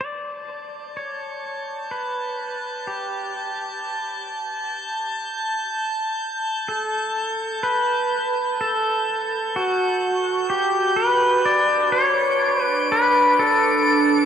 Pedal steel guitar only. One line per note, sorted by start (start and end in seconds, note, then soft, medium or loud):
0.01 0.96 D5 medium
0.97 1.91 C#5 medium
1.91 2.91 B4 medium
2.87 4.75 G4 medium
6.69 7.63 A4 medium
7.63 8.61 B4 medium
8.61 9.59 A4 medium
9.56 10.54 F#4 medium
10.50 10.99 G4 medium
10.96 11.47 B4 medium
11.45 11.92 D5 medium
11.92 12.62 C#5 medium
12.62 12.91 B4 medium
12.92 13.40 B4 medium
13.39 14.25 A4 medium